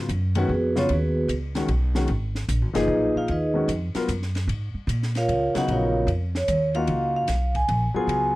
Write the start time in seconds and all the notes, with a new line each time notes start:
0.09 F#2, hi-hat pedal, ride
0.35 D#3 G#3 B3 C#4 F#4 G#4 B4, ride
0.49 F2
0.76 C#3 F#3 B3 C#4 F4 C#5, snare
0.89 D#2 F#4, ride
0.93 B3 G#4 B4
1.28 C#2, hi-hat pedal, ride
1.55 D#3 G#3 C#4 F#4, snare, ride
1.68 B1, ride
1.95 D#3 G#3 C#4 F#4, snare
2.08 G#1, ride
2.35 snare
2.48 A#1, hi-hat pedal, ride
2.61 G#1
2.73 F#1 A#2 F3 D#4 G#4 D#5, snare, ride
2.78 D#4 B4
2.88 B1
3.15 F4 F5, muted upright bass stroke
3.28 D#2 D#4 G#4 D#5, ride
3.32 B4
3.54 D#3 G#3 C#4 F#4
3.68 F2, hi-hat pedal, ride
3.95 F#3 B3 F4 A#4, muted upright bass stroke, snare, ride
4.08 F#2, hi-hat pedal, ride
4.22 snare
4.35 snare, ride
4.47 G#2, ride
4.74 muted upright bass stroke
4.87 A#2, hi-hat pedal, ride
5.03 snare
5.15 F4 A#4 C#5 F5, snare, ride
5.28 C#2, ride
5.54 C#3 F#3 B3 D#4 F#4 F#5, muted upright bass stroke, snare, ride
5.68 A#1 F5, ride
5.72 F4 A#4 C#5
6.07 F2, ride
6.35 C#5, snare
6.48 D#2, hi-hat pedal, ride
6.75 A#3 D#4 F4 F#4 F5, ride
6.87 C#2, ride
7.16 F5
7.28 B1, snare, hi-hat pedal, ride
7.55 G#5, kick, ride
7.68 A#1, ride
7.94 F#3 B3 F4 G#4 G#5, muted upright bass stroke
8.07 C#2, ride